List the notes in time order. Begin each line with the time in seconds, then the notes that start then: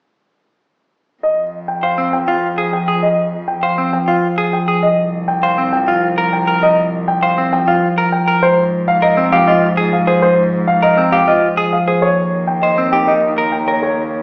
1.23 F2 D#5
1.68 G5
1.83 C5 F5
1.98 C4
2.13 F3 G5
2.28 F4 F5
2.58 G#4
2.73 G5
2.88 G#4
3.03 D#5
3.48 G5
3.63 C5 F5
3.78 C4
3.93 F3 G5
4.08 F4 F5
4.38 G#4
4.53 G5
4.68 G#4
4.83 C2 D#5
5.28 G5
5.43 C5 F5
5.58 C4
5.73 F3 G5
5.88 F4 F5
6.18 A#4
6.33 G5
6.47 A#4
6.63 D#5
7.08 G5
7.23 C5 F5
7.38 C4
7.53 F3 G5
7.68 F4 F5
7.98 A#4
8.12 G5
8.28 A#4
8.42 G#2 C5
8.88 F5
9.02 A#4 D#5
9.17 C4
9.32 F3 G4 F5
9.47 F4 D#5
9.77 G#4
9.93 F5
10.07 G#4 C5
10.22 C5
10.67 F5
10.82 A#4 D#5
10.98 C4
11.12 F3 G4 F5
11.28 F4 D#5
11.57 G#4
11.73 F5
11.87 G#4 C5
12.02 D#2 C#5
12.47 G5
12.62 C5 D#5
12.78 C4
12.92 D#3 G4 G5
13.07 D#4 D#5
13.38 A#4
13.52 G5
13.68 A#4 C#5
13.82 C#5